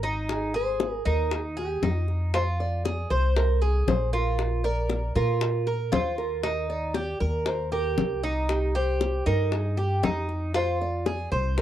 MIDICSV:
0, 0, Header, 1, 5, 480
1, 0, Start_track
1, 0, Key_signature, -3, "major"
1, 0, Tempo, 513259
1, 266, Time_signature, 4, 2, 24, 8
1, 10863, End_track
2, 0, Start_track
2, 0, Title_t, "Nylon-string guitar"
2, 0, Program_c, 0, 24
2, 285, Note_on_c, 0, 68, 86
2, 522, Note_off_c, 0, 68, 0
2, 522, Note_on_c, 0, 72, 83
2, 960, Note_off_c, 0, 72, 0
2, 1002, Note_on_c, 0, 70, 91
2, 1217, Note_off_c, 0, 70, 0
2, 1241, Note_on_c, 0, 68, 86
2, 1304, Note_off_c, 0, 68, 0
2, 1479, Note_on_c, 0, 67, 78
2, 1918, Note_off_c, 0, 67, 0
2, 2191, Note_on_c, 0, 72, 104
2, 2255, Note_off_c, 0, 72, 0
2, 2433, Note_on_c, 0, 74, 90
2, 2874, Note_off_c, 0, 74, 0
2, 2907, Note_on_c, 0, 72, 92
2, 3147, Note_off_c, 0, 72, 0
2, 3151, Note_on_c, 0, 70, 90
2, 3370, Note_off_c, 0, 70, 0
2, 3384, Note_on_c, 0, 68, 91
2, 3627, Note_on_c, 0, 72, 88
2, 3630, Note_off_c, 0, 68, 0
2, 3860, Note_off_c, 0, 72, 0
2, 3864, Note_on_c, 0, 70, 80
2, 4339, Note_off_c, 0, 70, 0
2, 4343, Note_on_c, 0, 74, 96
2, 4825, Note_off_c, 0, 74, 0
2, 4828, Note_on_c, 0, 70, 94
2, 5507, Note_off_c, 0, 70, 0
2, 5545, Note_on_c, 0, 72, 93
2, 5777, Note_off_c, 0, 72, 0
2, 5781, Note_on_c, 0, 70, 81
2, 6228, Note_off_c, 0, 70, 0
2, 6262, Note_on_c, 0, 74, 81
2, 6982, Note_off_c, 0, 74, 0
2, 6986, Note_on_c, 0, 72, 76
2, 7224, Note_off_c, 0, 72, 0
2, 7228, Note_on_c, 0, 70, 83
2, 7671, Note_off_c, 0, 70, 0
2, 7951, Note_on_c, 0, 67, 97
2, 8170, Note_off_c, 0, 67, 0
2, 8191, Note_on_c, 0, 72, 99
2, 8667, Note_off_c, 0, 72, 0
2, 8671, Note_on_c, 0, 70, 88
2, 8890, Note_off_c, 0, 70, 0
2, 8913, Note_on_c, 0, 68, 76
2, 9131, Note_off_c, 0, 68, 0
2, 9155, Note_on_c, 0, 67, 83
2, 9596, Note_off_c, 0, 67, 0
2, 9872, Note_on_c, 0, 72, 93
2, 10110, Note_off_c, 0, 72, 0
2, 10114, Note_on_c, 0, 74, 94
2, 10556, Note_off_c, 0, 74, 0
2, 10597, Note_on_c, 0, 72, 96
2, 10815, Note_off_c, 0, 72, 0
2, 10833, Note_on_c, 0, 70, 93
2, 10863, Note_off_c, 0, 70, 0
2, 10863, End_track
3, 0, Start_track
3, 0, Title_t, "Cuban tres"
3, 0, Program_c, 1, 25
3, 29, Note_on_c, 1, 63, 93
3, 493, Note_off_c, 1, 63, 0
3, 506, Note_on_c, 1, 68, 82
3, 971, Note_off_c, 1, 68, 0
3, 985, Note_on_c, 1, 63, 81
3, 1450, Note_off_c, 1, 63, 0
3, 1466, Note_on_c, 1, 68, 72
3, 1698, Note_off_c, 1, 68, 0
3, 1709, Note_on_c, 1, 63, 72
3, 2172, Note_off_c, 1, 63, 0
3, 2188, Note_on_c, 1, 65, 76
3, 2651, Note_off_c, 1, 65, 0
3, 2665, Note_on_c, 1, 68, 63
3, 2897, Note_off_c, 1, 68, 0
3, 2902, Note_on_c, 1, 72, 75
3, 3368, Note_off_c, 1, 72, 0
3, 3381, Note_on_c, 1, 68, 72
3, 3847, Note_off_c, 1, 68, 0
3, 3863, Note_on_c, 1, 65, 84
3, 4328, Note_off_c, 1, 65, 0
3, 4341, Note_on_c, 1, 70, 71
3, 4807, Note_off_c, 1, 70, 0
3, 4821, Note_on_c, 1, 65, 78
3, 5287, Note_off_c, 1, 65, 0
3, 5301, Note_on_c, 1, 70, 62
3, 5534, Note_off_c, 1, 70, 0
3, 5535, Note_on_c, 1, 65, 75
3, 6004, Note_off_c, 1, 65, 0
3, 6018, Note_on_c, 1, 63, 80
3, 6486, Note_off_c, 1, 63, 0
3, 6498, Note_on_c, 1, 67, 65
3, 6732, Note_off_c, 1, 67, 0
3, 6737, Note_on_c, 1, 70, 76
3, 7205, Note_off_c, 1, 70, 0
3, 7220, Note_on_c, 1, 67, 66
3, 7686, Note_off_c, 1, 67, 0
3, 7701, Note_on_c, 1, 63, 90
3, 8167, Note_off_c, 1, 63, 0
3, 8183, Note_on_c, 1, 67, 79
3, 8648, Note_off_c, 1, 67, 0
3, 8660, Note_on_c, 1, 63, 87
3, 9127, Note_off_c, 1, 63, 0
3, 9139, Note_on_c, 1, 67, 70
3, 9374, Note_off_c, 1, 67, 0
3, 9383, Note_on_c, 1, 63, 81
3, 9849, Note_off_c, 1, 63, 0
3, 9862, Note_on_c, 1, 65, 84
3, 10329, Note_off_c, 1, 65, 0
3, 10343, Note_on_c, 1, 68, 68
3, 10576, Note_off_c, 1, 68, 0
3, 10583, Note_on_c, 1, 72, 75
3, 10863, Note_off_c, 1, 72, 0
3, 10863, End_track
4, 0, Start_track
4, 0, Title_t, "Upright bass"
4, 0, Program_c, 2, 32
4, 0, Note_on_c, 2, 32, 81
4, 924, Note_off_c, 2, 32, 0
4, 988, Note_on_c, 2, 39, 90
4, 1668, Note_off_c, 2, 39, 0
4, 1703, Note_on_c, 2, 41, 82
4, 2841, Note_off_c, 2, 41, 0
4, 2903, Note_on_c, 2, 36, 91
4, 3585, Note_off_c, 2, 36, 0
4, 3623, Note_on_c, 2, 34, 84
4, 4761, Note_off_c, 2, 34, 0
4, 4821, Note_on_c, 2, 46, 92
4, 5504, Note_off_c, 2, 46, 0
4, 5540, Note_on_c, 2, 39, 77
4, 6679, Note_off_c, 2, 39, 0
4, 6739, Note_on_c, 2, 39, 97
4, 7423, Note_off_c, 2, 39, 0
4, 7462, Note_on_c, 2, 36, 79
4, 8601, Note_off_c, 2, 36, 0
4, 8664, Note_on_c, 2, 43, 96
4, 9346, Note_off_c, 2, 43, 0
4, 9385, Note_on_c, 2, 41, 89
4, 10524, Note_off_c, 2, 41, 0
4, 10585, Note_on_c, 2, 36, 100
4, 10863, Note_off_c, 2, 36, 0
4, 10863, End_track
5, 0, Start_track
5, 0, Title_t, "Drums"
5, 35, Note_on_c, 9, 60, 33
5, 128, Note_off_c, 9, 60, 0
5, 274, Note_on_c, 9, 60, 63
5, 368, Note_off_c, 9, 60, 0
5, 747, Note_on_c, 9, 60, 65
5, 841, Note_off_c, 9, 60, 0
5, 992, Note_on_c, 9, 60, 39
5, 1086, Note_off_c, 9, 60, 0
5, 1229, Note_on_c, 9, 60, 68
5, 1322, Note_off_c, 9, 60, 0
5, 1471, Note_on_c, 9, 60, 36
5, 1564, Note_off_c, 9, 60, 0
5, 1708, Note_on_c, 9, 60, 35
5, 1708, Note_on_c, 9, 61, 77
5, 1802, Note_off_c, 9, 60, 0
5, 1802, Note_off_c, 9, 61, 0
5, 1946, Note_on_c, 9, 60, 35
5, 2039, Note_off_c, 9, 60, 0
5, 2187, Note_on_c, 9, 60, 73
5, 2281, Note_off_c, 9, 60, 0
5, 2670, Note_on_c, 9, 60, 59
5, 2763, Note_off_c, 9, 60, 0
5, 2908, Note_on_c, 9, 60, 39
5, 3002, Note_off_c, 9, 60, 0
5, 3146, Note_on_c, 9, 60, 77
5, 3240, Note_off_c, 9, 60, 0
5, 3389, Note_on_c, 9, 60, 34
5, 3482, Note_off_c, 9, 60, 0
5, 3627, Note_on_c, 9, 60, 35
5, 3627, Note_on_c, 9, 61, 85
5, 3721, Note_off_c, 9, 60, 0
5, 3721, Note_off_c, 9, 61, 0
5, 3865, Note_on_c, 9, 60, 33
5, 3959, Note_off_c, 9, 60, 0
5, 4104, Note_on_c, 9, 60, 63
5, 4198, Note_off_c, 9, 60, 0
5, 4578, Note_on_c, 9, 60, 57
5, 4672, Note_off_c, 9, 60, 0
5, 4825, Note_on_c, 9, 60, 37
5, 4918, Note_off_c, 9, 60, 0
5, 5061, Note_on_c, 9, 60, 71
5, 5155, Note_off_c, 9, 60, 0
5, 5301, Note_on_c, 9, 60, 38
5, 5394, Note_off_c, 9, 60, 0
5, 5542, Note_on_c, 9, 60, 35
5, 5542, Note_on_c, 9, 61, 88
5, 5636, Note_off_c, 9, 60, 0
5, 5636, Note_off_c, 9, 61, 0
5, 5781, Note_on_c, 9, 60, 35
5, 5874, Note_off_c, 9, 60, 0
5, 6018, Note_on_c, 9, 60, 64
5, 6111, Note_off_c, 9, 60, 0
5, 6494, Note_on_c, 9, 60, 59
5, 6588, Note_off_c, 9, 60, 0
5, 6740, Note_on_c, 9, 60, 38
5, 6833, Note_off_c, 9, 60, 0
5, 6976, Note_on_c, 9, 60, 68
5, 7069, Note_off_c, 9, 60, 0
5, 7218, Note_on_c, 9, 60, 38
5, 7311, Note_off_c, 9, 60, 0
5, 7460, Note_on_c, 9, 60, 36
5, 7460, Note_on_c, 9, 61, 81
5, 7554, Note_off_c, 9, 60, 0
5, 7554, Note_off_c, 9, 61, 0
5, 7701, Note_on_c, 9, 60, 37
5, 7795, Note_off_c, 9, 60, 0
5, 7942, Note_on_c, 9, 60, 64
5, 8035, Note_off_c, 9, 60, 0
5, 8424, Note_on_c, 9, 60, 61
5, 8518, Note_off_c, 9, 60, 0
5, 8666, Note_on_c, 9, 60, 36
5, 8760, Note_off_c, 9, 60, 0
5, 8903, Note_on_c, 9, 60, 65
5, 8996, Note_off_c, 9, 60, 0
5, 9142, Note_on_c, 9, 60, 33
5, 9235, Note_off_c, 9, 60, 0
5, 9386, Note_on_c, 9, 60, 34
5, 9386, Note_on_c, 9, 61, 84
5, 9479, Note_off_c, 9, 60, 0
5, 9479, Note_off_c, 9, 61, 0
5, 9622, Note_on_c, 9, 60, 35
5, 9715, Note_off_c, 9, 60, 0
5, 9861, Note_on_c, 9, 60, 68
5, 9954, Note_off_c, 9, 60, 0
5, 10345, Note_on_c, 9, 60, 61
5, 10439, Note_off_c, 9, 60, 0
5, 10588, Note_on_c, 9, 60, 38
5, 10681, Note_off_c, 9, 60, 0
5, 10828, Note_on_c, 9, 60, 65
5, 10863, Note_off_c, 9, 60, 0
5, 10863, End_track
0, 0, End_of_file